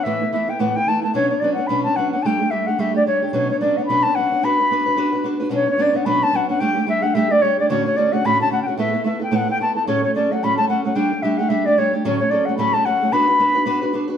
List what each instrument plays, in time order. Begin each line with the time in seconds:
0.03 steel-string acoustic guitar A2 E3 A3 B3 E4, flute E5
0.21 steel-string acoustic guitar A3 B3 E4
0.33 steel-string acoustic guitar E3 A3 B3 E4, flute E5
0.48 steel-string acoustic guitar A3 B3 E4, flute G5
0.59 steel-string acoustic guitar A2 E3 A3 B3 E4, flute F#5
0.76 steel-string acoustic guitar A3 B3 E4, flute G5
0.87 steel-string acoustic guitar E3 A3 B3 E4, flute A5
1.02 steel-string acoustic guitar A3 B3 E4, flute A5
1.14 steel-string acoustic guitar B2 F#3 B3 C#4 D4, flute C#5
1.29 steel-string acoustic guitar B3 C#4 D4, flute C#5
1.40 steel-string acoustic guitar F#3 B3, flute D5
1.44 steel-string acoustic guitar C#4 D4
1.54 steel-string acoustic guitar C#4 D4, flute F#5
1.59 steel-string acoustic guitar B3
1.67 steel-string acoustic guitar B2 F#3 B3 C#4 D4, flute B5
1.83 steel-string acoustic guitar B3 C#4 D4, flute A5
1.96 steel-string acoustic guitar F#3 B3 C#4 D4, flute F#5
2.12 steel-string acoustic guitar B3 C#4 D4, flute F#5
2.23 steel-string acoustic guitar G3 A3 D4 G4, flute G5 A5
2.40 steel-string acoustic guitar A3 D4 G4
2.51 steel-string acoustic guitar G3 A3 D4 G4, flute E5
2.67 steel-string acoustic guitar A3 D4 G4, flute F#5
2.78 steel-string acoustic guitar G3 A3 D4 G4, flute E5
2.94 steel-string acoustic guitar A3 D4 G4, flute D5
3.06 steel-string acoustic guitar G3 A3 D4 G4, flute C#5
3.22 steel-string acoustic guitar A3 D4 G4
3.33 steel-string acoustic guitar B2 F#3 B3 C#4 D4, flute C#5
3.50 steel-string acoustic guitar B3 C#4 D4, flute C#5
3.60 steel-string acoustic guitar F#3 B3 C#4 D4, flute D5
3.77 steel-string acoustic guitar B3 C#4 D4, flute F#5
3.85 steel-string acoustic guitar B2, flute B5
3.90 steel-string acoustic guitar F#3 B3 C#4 D4
4.03 steel-string acoustic guitar C#4 D4, flute A5
4.08 steel-string acoustic guitar B3
4.15 steel-string acoustic guitar F#3 B3 C#4 D4, flute F#5
4.31 steel-string acoustic guitar B3 C#4 D4
4.43 steel-string acoustic guitar B3 D4 F#4 B4, flute B5
4.59 steel-string acoustic guitar D4 F#4 B4
4.71 steel-string acoustic guitar B3 D4 F#4 B4
4.86 steel-string acoustic guitar D4 F#4 B4
4.96 steel-string acoustic guitar B3 D4 F#4 B4
5.12 steel-string acoustic guitar D4 F#4 B4
5.24 steel-string acoustic guitar B3 D4 F#4 B4
5.40 steel-string acoustic guitar D4 F#4 B4
5.49 steel-string acoustic guitar B2 F#3 B3 C#4 D4
5.54 flute C#5
5.66 steel-string acoustic guitar B3 C#4 D4
5.71 flute C#5
5.78 steel-string acoustic guitar F#3 B3 C#4 D4, flute D5
5.93 steel-string acoustic guitar B3 C#4 D4, flute F#5
6.05 steel-string acoustic guitar B2 F#3 B3 C#4 D4, flute B5
6.22 steel-string acoustic guitar B3 C#4 D4, flute A5
6.33 steel-string acoustic guitar F#3 B3 C#4 D4, flute F#5
6.49 steel-string acoustic guitar B3 C#4 D4, flute F#5
6.60 steel-string acoustic guitar G3 A3 D4 G4, flute G5
6.75 steel-string acoustic guitar A3 D4 G4
6.86 steel-string acoustic guitar G3 A3 D4 G4, flute E5
7.02 steel-string acoustic guitar A3 D4 G4, flute F#5
7.14 steel-string acoustic guitar G3 A3 D4 G4, flute E5
7.30 steel-string acoustic guitar A3 D4 G4, flute D5
7.42 steel-string acoustic guitar G3 A3 D4 G4, flute C#5
7.59 steel-string acoustic guitar A3 D4 G4, flute D5
7.69 steel-string acoustic guitar D2 A2 D3 A3 C#4 F#4, flute C#5
7.86 steel-string acoustic guitar D3 A3 C#4 F#4, flute C#5
7.96 steel-string acoustic guitar D3 A3 C#4 F#4, flute D5
8.12 steel-string acoustic guitar D3 A3 C#4 F#4, flute F#5
8.24 steel-string acoustic guitar D2 A2 D3 A3 C#4 F#4, flute B5
8.40 steel-string acoustic guitar D3 A3 C#4 F#4, flute A5
8.50 steel-string acoustic guitar D3 A3 C#4 F#4, flute F#5
8.62 flute G5
8.66 steel-string acoustic guitar D3 A3 C#4 F#4, flute F#5
8.78 steel-string acoustic guitar A2 A3 B3 E4 A4, flute E5
8.93 steel-string acoustic guitar B3 E4 A4
9.04 steel-string acoustic guitar A3 B3 E4 A4, flute E5
9.20 steel-string acoustic guitar B3 E4 A4, flute G5
9.31 steel-string acoustic guitar A2 A3 B3 E4 A4
9.36 flute F#5
9.48 steel-string acoustic guitar B3 E4 A4, flute G5
9.61 steel-string acoustic guitar A3 B3 E4 A4, flute A5
9.75 steel-string acoustic guitar B3 E4 A4, flute A5
9.87 steel-string acoustic guitar D2 A2 F#3 A3 C#4 A4, flute C#5
10.03 steel-string acoustic guitar F#3 A3 C#4 A4, flute C#5
10.15 steel-string acoustic guitar F#3 A3 C#4 A4, flute D5
10.31 steel-string acoustic guitar F#3 A3 C#4 A4, flute F#5
10.43 steel-string acoustic guitar D2 A2 F#3 A3 C#4 A4, flute B5
10.57 steel-string acoustic guitar F#3 A3 C#4 A4, flute A5
10.68 steel-string acoustic guitar F#3 A3 C#4 A4, flute F#5
10.84 steel-string acoustic guitar F#3 A3 C#4 A4, flute F#5
10.95 steel-string acoustic guitar G3 A3 D4 G4, flute G5
11.11 steel-string acoustic guitar A3 D4 G4
11.22 steel-string acoustic guitar G3 A3 D4 G4, flute E5
11.38 steel-string acoustic guitar A3 D4 G4, flute F#5
11.49 steel-string acoustic guitar G3 A3 D4 G4, flute E5
11.65 steel-string acoustic guitar A3 D4 G4, flute D5
11.78 steel-string acoustic guitar G3 A3 D4 G4, flute C#5
11.93 steel-string acoustic guitar A3 D4 G4
12.04 steel-string acoustic guitar D2 A2 F#3 A3 C#4 A4, flute C#5
12.20 steel-string acoustic guitar F#3 A3 C#4 A4, flute C#5
12.30 steel-string acoustic guitar F#3 A3 C#4 A4, flute D5
12.45 steel-string acoustic guitar A3 C#4 A4, flute F#5
12.50 steel-string acoustic guitar F#3
12.58 steel-string acoustic guitar D2 A2 F#3 A3 C#4 A4, flute B5
12.73 steel-string acoustic guitar F#3 A3 C#4 A4, flute A5
12.85 steel-string acoustic guitar F#3 A3 C#4 A4, flute F#5
13.02 steel-string acoustic guitar F#3 A3 C#4 A4
13.12 steel-string acoustic guitar B3 D4 F#4 B4, flute B5
13.27 steel-string acoustic guitar D4 F#4 B4
13.40 steel-string acoustic guitar B3 D4 F#4 B4
13.55 steel-string acoustic guitar D4 F#4 B4
13.66 steel-string acoustic guitar B3 D4 F#4 B4
13.81 steel-string acoustic guitar D4 F#4 B4
13.93 steel-string acoustic guitar B3 D4 F#4 B4
14.07 steel-string acoustic guitar D4 F#4 B4